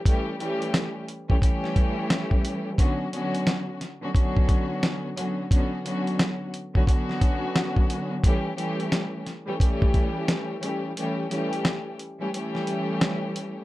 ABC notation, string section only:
X:1
M:4/4
L:1/16
Q:"Swing 16ths" 1/4=88
K:Amix
V:1 name="String section"
[E,G,A,CG]2 [E,G,A,CG]4 z [E,G,A,CG] [E,G,A,CG]6- [E,G,A,CG] z | [D,F,B,CF]2 [D,F,B,CF]4 z [D,F,B,CF] [D,F,B,CF]6 [D,F,B,CF]2 | [D,F,B,CF]2 [D,F,B,CF]4 z [D,F,B,CF] [D,F,B,CF]6- [D,F,B,CF] z | [E,G,A,CG]2 [E,G,A,CG]4 z [E,G,A,CG] [E,G,A,CG]6 [E,G,A,CG]2 |
[E,G,A,CG]2 [E,G,A,CG]4 z [E,G,A,CG] [E,G,A,CG]6- [E,G,A,CG] z |]